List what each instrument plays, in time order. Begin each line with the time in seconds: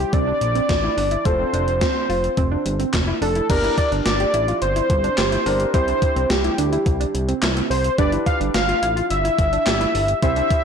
Already playing: grand piano C4 E4 G4, analog synth lead G4
0.13 analog synth bass C2, synth arpeggio sound C4, analog synth lead D5, kick, closed hi-hat
0.27 synth arpeggio sound D4
0.41 analog synth bass A#1, closed hi-hat
0.55 synth arpeggio sound C4, closed hi-hat
0.69 analog synth bass A1, kick, snare, closed hi-hat
0.83 synth arpeggio sound E4
0.97 analog synth bass G1, synth arpeggio sound D4, open hi-hat
1.11 synth arpeggio sound E4, closed hi-hat
1.25 analog synth bass F1, grand piano C4 F4 A4, analog synth lead C5, kick, closed hi-hat
1.39 synth arpeggio sound C4
1.53 analog synth bass F1, synth arpeggio sound D4, closed hi-hat
1.68 closed hi-hat
1.81 synth arpeggio sound C4, kick, snare, closed hi-hat
2.09 analog synth bass F1, synth arpeggio sound F4, open hi-hat
2.24 closed hi-hat
2.37 analog synth bass F1, synth arpeggio sound C4, kick, closed hi-hat
2.51 synth arpeggio sound D4
2.66 analog synth bass G1, closed hi-hat
2.79 synth arpeggio sound C4, closed hi-hat
2.93 analog synth bass F1, kick, snare, clap, closed hi-hat
3.07 synth arpeggio sound E4
3.22 analog synth bass F1, synth arpeggio sound D4, analog synth lead A4, open hi-hat
3.35 synth arpeggio sound E4, closed hi-hat
3.50 analog synth bass G1, grand piano D4 G4 A#4, synth arpeggio sound D4, analog synth lead A#4, kick, closed hi-hat, crash
3.64 synth arpeggio sound E4, closed hi-hat
3.78 analog synth lead D5, kick, closed hi-hat
3.92 analog synth bass G1, synth arpeggio sound D4, closed hi-hat
4.06 analog synth bass G1, analog synth lead D5, snare, closed hi-hat
4.20 synth arpeggio sound G4, closed hi-hat
4.34 analog synth bass A1, synth arpeggio sound E4, closed hi-hat
4.48 synth arpeggio sound F4, closed hi-hat
4.62 analog synth bass G1, analog synth lead C5, closed hi-hat
4.76 synth arpeggio sound E4, closed hi-hat
4.90 analog synth bass G1, kick, closed hi-hat
5.04 synth arpeggio sound D4, closed hi-hat
5.18 analog synth bass G1, synth arpeggio sound G4, snare, clap, closed hi-hat
5.32 synth arpeggio sound E4, closed hi-hat
5.46 analog synth bass G1, grand piano D4 G4 A#4, open hi-hat
5.60 closed hi-hat
5.74 analog synth bass C2, synth arpeggio sound C4, grand piano E4 G4 C5, analog synth lead C5, kick, closed hi-hat
5.88 synth arpeggio sound D4, closed hi-hat
6.02 kick, closed hi-hat
6.16 analog synth bass C2, synth arpeggio sound C4, closed hi-hat
6.30 analog synth bass C2, analog synth lead G4, snare, closed hi-hat
6.44 synth arpeggio sound E4, closed hi-hat
6.58 analog synth bass D2, synth arpeggio sound D4, closed hi-hat
6.72 synth arpeggio sound E4, closed hi-hat
6.86 analog synth bass C2, kick, closed hi-hat
7.00 synth arpeggio sound D4, closed hi-hat
7.14 analog synth bass C2, closed hi-hat
7.28 synth arpeggio sound C4, closed hi-hat
7.42 analog synth bass C2, synth arpeggio sound E4, snare, clap, closed hi-hat
7.56 synth arpeggio sound C4, closed hi-hat
7.70 analog synth bass C2, analog synth lead C5, open hi-hat
7.84 closed hi-hat
7.98 analog synth bass G1, synth arpeggio sound D4, grand piano D4 G4 B4, analog synth lead D5, kick, closed hi-hat
8.12 synth arpeggio sound E4, closed hi-hat
8.26 analog synth lead F5, kick, closed hi-hat
8.40 analog synth bass G1, synth arpeggio sound D4, closed hi-hat
8.54 analog synth bass G1, analog synth lead F5, snare, closed hi-hat
8.68 synth arpeggio sound F4, closed hi-hat
8.82 analog synth bass A1, synth arpeggio sound E4, closed hi-hat
8.96 synth arpeggio sound F4, closed hi-hat
9.10 analog synth bass G1, analog synth lead E5, closed hi-hat
9.25 synth arpeggio sound E4, closed hi-hat
9.39 analog synth bass G1, kick, closed hi-hat
9.53 synth arpeggio sound D4, closed hi-hat
9.67 analog synth bass G1, synth arpeggio sound G4, snare, clap, closed hi-hat
9.81 synth arpeggio sound E4, closed hi-hat
9.95 analog synth bass G1, open hi-hat
10.08 closed hi-hat
10.22 analog synth bass C2, synth arpeggio sound C4, grand piano E4 G4 C5, analog synth lead E5, kick, closed hi-hat
10.36 synth arpeggio sound D4, closed hi-hat
10.51 kick, closed hi-hat